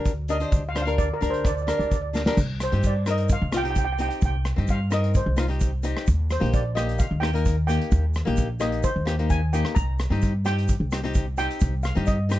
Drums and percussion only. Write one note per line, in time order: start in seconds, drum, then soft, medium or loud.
0.05 kick medium
0.05 closed hi-hat medium
0.05 shaker medium
0.28 closed hi-hat medium
0.28 shaker medium
0.40 closed hi-hat medium
0.40 shaker soft
0.52 kick loud
0.52 closed hi-hat medium
0.52 shaker medium
0.76 cross-stick medium
0.76 closed hi-hat medium
0.76 shaker medium
0.87 closed hi-hat medium
0.87 shaker soft
0.98 kick medium
0.98 closed hi-hat medium
0.98 shaker medium
1.22 closed hi-hat medium
1.22 shaker medium
1.34 closed hi-hat medium
1.34 shaker soft
1.45 kick loud
1.45 cross-stick medium
1.45 closed hi-hat medium
1.45 shaker loud
1.57 shaker soft
1.68 cross-stick medium
1.68 closed hi-hat medium
1.68 shaker medium
1.80 closed hi-hat medium
1.80 shaker soft
1.91 kick medium
1.91 closed hi-hat medium
1.91 shaker medium
2.15 snare medium
2.15 shaker medium
2.26 snare medium
2.26 shaker soft
2.37 kick loud
2.37 crash loud
2.37 shaker medium
2.60 cross-stick medium
2.60 closed hi-hat medium
2.60 shaker medium
2.72 closed hi-hat medium
2.83 kick medium
2.83 closed hi-hat medium
2.83 shaker medium
3.06 cross-stick medium
3.06 closed hi-hat medium
3.06 shaker medium
3.17 closed hi-hat medium
3.29 kick loud
3.29 closed hi-hat medium
3.29 shaker medium
3.52 cross-stick medium
3.52 closed hi-hat medium
3.52 shaker medium
3.65 closed hi-hat medium
3.75 kick medium
3.75 closed hi-hat medium
3.75 shaker medium
3.98 closed hi-hat medium
3.98 shaker medium
4.10 closed hi-hat medium
4.22 kick loud
4.22 closed hi-hat medium
4.22 shaker medium
4.45 cross-stick medium
4.45 closed hi-hat medium
4.45 shaker medium
4.58 closed hi-hat medium
4.67 kick medium
4.67 closed hi-hat medium
4.67 shaker medium
4.91 cross-stick medium
4.91 closed hi-hat medium
4.91 shaker medium
5.04 closed hi-hat medium
5.15 kick loud
5.15 closed hi-hat medium
5.15 shaker loud
5.37 cross-stick loud
5.37 closed hi-hat medium
5.37 shaker medium
5.50 closed hi-hat medium
5.60 kick medium
5.60 closed hi-hat medium
5.60 shaker medium
5.83 closed hi-hat medium
5.83 shaker medium
5.97 cross-stick medium
5.97 closed hi-hat medium
6.07 kick loud
6.07 closed hi-hat medium
6.07 shaker loud
6.30 cross-stick medium
6.30 closed hi-hat medium
6.30 shaker medium
6.42 closed hi-hat medium
6.53 kick medium
6.53 closed hi-hat medium
6.53 shaker medium
6.77 cross-stick medium
6.77 closed hi-hat medium
6.77 shaker medium
6.89 closed hi-hat medium
6.99 kick loud
6.99 closed hi-hat medium
6.99 shaker loud
7.23 cross-stick medium
7.23 closed hi-hat medium
7.35 closed hi-hat medium
7.45 kick medium
7.45 closed hi-hat medium
7.45 shaker medium
7.68 closed hi-hat medium
7.68 shaker medium
7.81 closed hi-hat medium
7.92 kick loud
7.92 closed hi-hat medium
7.92 shaker loud
8.14 cross-stick medium
8.14 closed hi-hat medium
8.14 shaker medium
8.27 closed hi-hat medium
8.37 kick medium
8.37 closed hi-hat medium
8.37 shaker medium
8.60 cross-stick medium
8.60 closed hi-hat medium
8.60 shaker medium
8.72 closed hi-hat medium
8.83 kick loud
8.83 closed hi-hat medium
8.83 shaker loud
9.07 cross-stick medium
9.07 closed hi-hat medium
9.07 shaker medium
9.19 closed hi-hat medium
9.30 kick medium
9.30 closed hi-hat medium
9.30 shaker loud
9.53 closed hi-hat medium
9.53 shaker medium
9.65 cross-stick medium
9.65 closed hi-hat medium
9.76 kick loud
9.76 closed hi-hat medium
9.76 shaker loud
9.99 cross-stick medium
9.99 closed hi-hat medium
9.99 shaker medium
10.12 closed hi-hat medium
10.22 kick medium
10.22 closed hi-hat medium
10.22 shaker medium
10.45 cross-stick medium
10.45 closed hi-hat medium
10.45 shaker medium
10.58 closed hi-hat medium
10.68 kick loud
10.68 closed hi-hat medium
10.68 shaker loud
10.91 cross-stick medium
10.91 closed hi-hat medium
10.91 shaker medium
11.04 closed hi-hat medium
11.14 kick medium
11.14 closed hi-hat medium
11.14 shaker medium
11.37 closed hi-hat medium
11.37 shaker medium
11.50 closed hi-hat medium
11.60 kick loud
11.60 closed hi-hat medium
11.60 shaker loud
11.83 cross-stick medium
11.83 closed hi-hat medium
11.83 shaker medium
11.97 closed hi-hat medium
12.06 kick medium
12.06 closed hi-hat medium
12.06 shaker medium
12.30 cross-stick medium
12.30 closed hi-hat medium
12.30 shaker medium